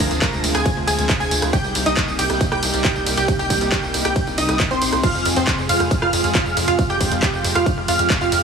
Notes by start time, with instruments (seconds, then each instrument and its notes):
Already playing: analog synth pad D3 F3 G#3 C4 F4, synth pluck A#4 A#5, digital synth lead A#6
0.11 analog synth bass D2, closed hi-hat, tambourine
0.22 synth pluck A#4 A#5, digital synth lead A#6, kick, clap, closed hi-hat, ride
0.33 analog synth bass D2, tambourine
0.44 analog synth bass D2, open hi-hat, ride, tambourine
0.55 analog synth bass D2, synth pluck G#4 G#5, digital synth lead G#6, cross-stick, closed hi-hat, tambourine
0.66 kick, closed hi-hat, ride, tambourine
0.77 analog synth bass D2
0.87 analog synth bass D2, synth pluck G#4 G#5, digital synth lead G#6, open hi-hat, ride, tambourine
0.98 analog synth bass D2, closed hi-hat, tambourine
1.09 kick, clap, closed hi-hat, ride, tambourine
1.20 analog synth bass D2, synth pluck G#4 G#5, digital synth lead G#6, tambourine
1.31 analog synth bass D2, open hi-hat, ride, tambourine
1.42 analog synth bass D2, cross-stick, closed hi-hat
1.53 analog synth pad C3 G3 A#3 D#4 G4, synth pluck G4 G5, digital synth lead G6, kick, closed hi-hat, ride, tambourine
1.64 analog synth bass C2, tambourine
1.75 analog synth bass C2, open hi-hat, ride, tambourine
1.86 analog synth bass C2, synth pluck D#4 D#5, digital synth lead D#6, closed hi-hat, tambourine
1.97 kick, clap, closed hi-hat, ride, tambourine
2.08 analog synth bass C2, tambourine
2.19 analog synth bass C2, synth pluck G4 G5, digital synth lead G6, open hi-hat, ride, tambourine
2.30 analog synth bass C2, cross-stick, closed hi-hat, tambourine
2.41 kick, closed hi-hat, ride, tambourine
2.52 analog synth bass C2, synth pluck G4 G5, digital synth lead G6, cross-stick
2.63 analog synth bass C2, open hi-hat, ride, tambourine
2.73 analog synth bass C2, closed hi-hat, tambourine
2.84 synth pluck G4 G5, digital synth lead G6, kick, clap, closed hi-hat, ride
2.95 analog synth bass C2, tambourine
3.06 analog synth bass C2, open hi-hat, ride, tambourine
3.17 analog synth bass C2, synth pluck G4 G5, digital synth lead G6, closed hi-hat, tambourine
3.28 kick, closed hi-hat, ride, tambourine
3.39 analog synth bass C2, synth pluck G4 G5, digital synth lead G6, tambourine
3.50 analog synth bass C2, kick, open hi-hat, ride, tambourine
3.61 analog synth bass C2, closed hi-hat, tambourine
3.72 synth pluck G4 G5, digital synth lead G6, kick, clap, closed hi-hat, ride
3.83 analog synth bass C2, tambourine
3.94 analog synth bass C2, open hi-hat, ride, tambourine
4.05 analog synth bass C2, synth pluck G4 G5, digital synth lead G6, cross-stick, closed hi-hat
4.16 kick, closed hi-hat, ride, tambourine
4.27 analog synth bass C2, tambourine
4.38 analog synth bass C2, synth pluck D#4 D#5, digital synth lead D#6, open hi-hat, ride, tambourine
4.49 analog synth bass C2, cross-stick, closed hi-hat, tambourine
4.60 kick, clap, closed hi-hat, ride, tambourine
4.71 analog synth bass C2, synth pluck C4 C5, digital synth lead C6, tambourine
4.82 analog synth bass A#1, open hi-hat, ride, tambourine
4.93 analog synth bass C2, cross-stick, closed hi-hat, tambourine
5.03 analog synth pad F3 G#3 F4 G#4, synth pluck F4 F5, digital synth lead F6, kick, closed hi-hat, crash, ride, tambourine
5.15 analog synth bass F2, tambourine
5.25 analog synth bass F2, open hi-hat, ride, tambourine
5.36 analog synth bass F2, synth pluck C4 C5, digital synth lead C6, closed hi-hat, tambourine
5.47 kick, clap, closed hi-hat, ride, tambourine
5.58 analog synth bass F2, tambourine
5.69 analog synth bass F2, synth pluck F4 F5, digital synth lead F6, open hi-hat, ride, tambourine
5.80 analog synth bass F2, cross-stick, closed hi-hat, tambourine
5.91 kick, closed hi-hat, ride, tambourine
6.02 analog synth bass F2, synth pluck F4 F5, digital synth lead F6, cross-stick
6.13 analog synth bass F2, open hi-hat, ride, tambourine
6.24 analog synth bass F2, closed hi-hat, tambourine
6.35 synth pluck F4 F5, digital synth lead F6, kick, clap, closed hi-hat, ride
6.46 analog synth bass F2, tambourine
6.57 analog synth bass F2, open hi-hat, ride, tambourine
6.68 analog synth bass F2, synth pluck F4 F5, digital synth lead F6, closed hi-hat, tambourine
6.79 analog synth pad G4, kick, closed hi-hat, ride, tambourine
6.90 analog synth bass F2, synth pluck G4 G5, digital synth lead G6, tambourine
7.01 analog synth bass F2, kick, open hi-hat, ride, tambourine
7.12 analog synth bass F2, closed hi-hat, tambourine
7.22 synth pluck G4 G5, digital synth lead G6, kick, clap, closed hi-hat, ride, tambourine
7.33 analog synth bass F2, tambourine
7.44 analog synth bass F2, open hi-hat, ride, tambourine
7.55 analog synth bass F2, synth pluck F4 F5, digital synth lead F6, cross-stick, closed hi-hat
7.66 kick, closed hi-hat, ride, tambourine
7.77 analog synth bass F2
7.88 analog synth bass F2, synth pluck F4 F5, digital synth lead F6, open hi-hat, ride, tambourine
7.99 analog synth bass F2, closed hi-hat, tambourine
8.10 kick, clap, closed hi-hat, ride, tambourine
8.21 analog synth bass F2, synth pluck F4 F5, digital synth lead F6, tambourine
8.32 analog synth bass F2, open hi-hat, ride, tambourine